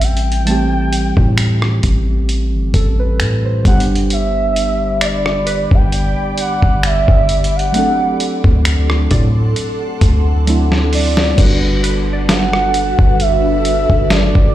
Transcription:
Already playing: A1 E3 G3 A3 C4 G4
0.01 G5, closed hi-hat
0.17 closed hi-hat
0.32 closed hi-hat
0.45 E3 G3 A3 A5, closed hi-hat
0.50 C4 G4
0.93 closed hi-hat
1.17 A2, kick
1.38 finger snap, closed hi-hat
1.62 cross-stick
1.83 A1, kick, closed hi-hat
2.29 closed hi-hat
2.53 G1
2.74 A1 A4, kick, closed hi-hat
2.99 B4
3.20 A2, finger snap, closed hi-hat
3.45 C5
3.63 G1 D3 G3 B3, kick, closed hi-hat
3.67 D4 G4 F#5
3.80 closed hi-hat
3.95 closed hi-hat
4.10 G4 D5 E5 B5 D6, closed hi-hat
4.56 closed hi-hat
5.01 D5, finger snap, closed hi-hat
5.26 cross-stick
5.46 B4, closed hi-hat
5.71 G1 G5, kick
5.92 closed hi-hat
6.38 F#5, closed hi-hat
6.62 G1, kick
6.83 E5, finger snap, closed hi-hat
7.08 G1, kick
7.29 closed hi-hat
7.44 closed hi-hat
7.56 F#5, closed hi-hat
7.72 F#3 A3 C4 A4 F#5 C6, closed hi-hat
7.77 D4 A4
8.20 closed hi-hat
8.44 D2, kick
8.65 finger snap, closed hi-hat
8.90 cross-stick
9.11 A2 D5, kick, closed hi-hat
9.56 closed hi-hat
10.01 D2, kick, closed hi-hat
10.46 F#3 A3 C4 D4 E4, closed hi-hat
10.72 snare
10.93 D5, open hi-hat
11.17 snare
11.36 G1 G3 B3 D4 F#4 A4 B4, kick, closed hi-hat, crash
11.40 F#4 B4
11.84 B4, closed hi-hat
12.13 D5
12.29 F#5, snare, closed hi-hat
12.53 cross-stick
12.74 closed hi-hat
12.99 G1, kick
13.20 E5, closed hi-hat
13.65 closed hi-hat
13.90 G1, kick
14.10 D5, snare, closed hi-hat
14.35 G1, kick

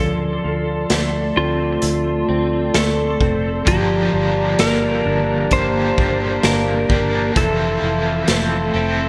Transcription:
Already playing: F3 A4 D5 A5 C6
0.00 D2
0.44 D2 F3
0.90 D2 A3, snare, closed hi-hat
1.36 D2 C4 F4
1.82 D2 A3, closed hi-hat
2.29 D2 C4
2.74 D2 A3 A4, snare, closed hi-hat
3.21 F1 C4, kick
3.65 G1 G2 D3 F3 G4 A#5, kick, closed hi-hat
3.70 A#3 D4 G4
4.13 G1 F3 D5
4.59 G1 A#3 A#4, snare, closed hi-hat
5.05 G1 D4
5.51 G1 G2 D3 F3 A#3 D4 G4 C5, kick, closed hi-hat
5.97 G1 D4, kick
6.43 G1 A#3 A#4, snare, closed hi-hat
6.89 G1 A#3 D4 G4, kick
6.94 F3
7.36 F1 E3 F3 C4 E4 A4 E5 C6, kick, closed hi-hat
7.82 F1 E3
8.28 F1 A3, snare, closed hi-hat
8.74 F1 C4 E4 A4
8.78 C4

